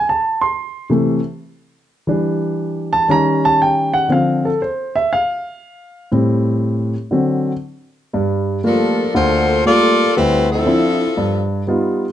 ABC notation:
X:1
M:4/4
L:1/8
Q:"Swing" 1/4=119
K:Dm
V:1 name="Saxophone section"
z8 | z8 | z8 | z8 |
[K:Gm] z2 [F,DAB]2 [B,FAc]2 [B,FAd]2 | [G,C=E=B] [F,CEA]4 z3 |]
V:2 name="Grand piano"
a c'2 z4 z | z3 a b a g ^f | f A c e f4 | z8 |
[K:Gm] z8 | z8 |]
V:3 name="Grand piano" clef=bass
z3 [C,E,A,] z4 | [E,G,D]4 [_E,G,_D]4 | [D,F,C] z6 z | [A,,G,C]3 z [D,^F,C] z3 |
[K:Gm] [G,,G,]2 [G,A,B,F] z [D,,D,]2 [G,A,B,F] z | D,,2 [F,CD=E] z G,,2 [G,=B,_EF] z |]